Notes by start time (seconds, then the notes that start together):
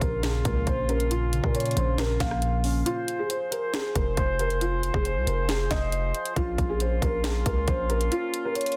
Already playing: A#2 C#3 A#3 C#4 F4
0.01 A#1 F3 A#4, kick, closed hi-hat
0.23 A#2 G#4, finger snap, snare, closed hi-hat
0.45 C#2 A#3 A#4, kick, closed hi-hat
0.67 A#1 A#2 C5, kick, closed hi-hat
0.89 C#4 A#4, closed hi-hat
1.00 closed hi-hat
1.11 A#2 F4, closed hi-hat
1.33 C#3, closed hi-hat
1.44 A#2 A#4, kick
1.54 A#2 C#5, closed hi-hat
1.60 closed hi-hat
1.66 closed hi-hat
1.71 closed hi-hat
1.77 A#1 F3 C5, closed hi-hat
1.98 A#2 A#4, finger snap, snare, closed hi-hat
2.20 A#1 A#3 F5, finger snap, kick, snare, closed hi-hat
2.31 cross-stick
2.42 A#2, closed hi-hat
2.64 C#4, open hi-hat
2.86 F3 F4 G#4 C5, closed hi-hat
3.08 closed hi-hat
3.19 G#4
3.29 C5, closed hi-hat
3.51 A#4, closed hi-hat
3.74 G#4, finger snap, snare, closed hi-hat
3.95 F1 A#4, kick, closed hi-hat
4.17 F1 C5, kick, closed hi-hat
4.39 A#4, closed hi-hat
4.50 closed hi-hat
4.61 F4, closed hi-hat
4.83 closed hi-hat
4.94 F1 G#4, kick
5.05 C5, closed hi-hat
5.16 C2
5.27 F1 A#4, closed hi-hat
5.49 G#4, finger snap, snare, closed hi-hat
5.71 F1 D#5, finger snap, kick, snare, closed hi-hat
5.92 closed hi-hat
6.15 closed hi-hat
6.25 closed hi-hat
6.36 A#1 A#3 C#4 F4, kick, closed hi-hat
6.58 A#1, kick, closed hi-hat
6.69 G#4
6.80 C5, closed hi-hat
7.02 A#1 A#4, kick, closed hi-hat
7.23 G#4, finger snap, snare, closed hi-hat
7.46 C#2 A#4, kick, closed hi-hat
7.68 A#1 C5, kick, closed hi-hat
7.89 A#4, closed hi-hat
8.01 closed hi-hat
8.12 F4, closed hi-hat
8.34 closed hi-hat
8.45 A#4
8.55 C#5, closed hi-hat
8.61 closed hi-hat
8.66 closed hi-hat
8.72 closed hi-hat